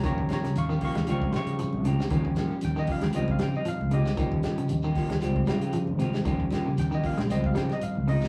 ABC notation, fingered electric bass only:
X:1
M:4/4
L:1/16
Q:"Swing 16ths" 1/4=116
K:Ebmix
V:1 name="Fingered electric bass" clef=bass
E,,2 z2 E,,2 z E,, D,,2 D,3 D,,3 | E,,2 z2 E,, z2 E,, D,,2 D, z2 D,,3 | E,,2 z2 E,,2 z E,, D,,2 D,3 A,,,3 | E,,2 z2 E,, z2 B,,, D,,2 D, z2 D,,3 |]